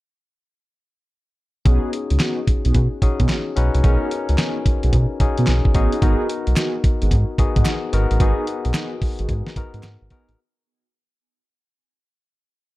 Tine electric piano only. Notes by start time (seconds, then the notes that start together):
1.65 C#4 D#4 F#4 G#4
3.02 C#4 D#4 F#4 G#4
3.56 C#4 D#4 F#4 B4
3.83 C#4 D#4 F#4 A#4
5.20 C#4 D#4 F#4 G#4
5.74 C#4 D#4 F#4 G#4
6.02 B3 D#4 F#4 A#4
7.39 B3 D#4 F#4 G#4
7.93 B3 D#4 F#4 A#4
8.20 B3 D#4 F#4 G#4
9.56 B3 D#4 F#4 A#4
10.11 B3 D#4 F#4 A#4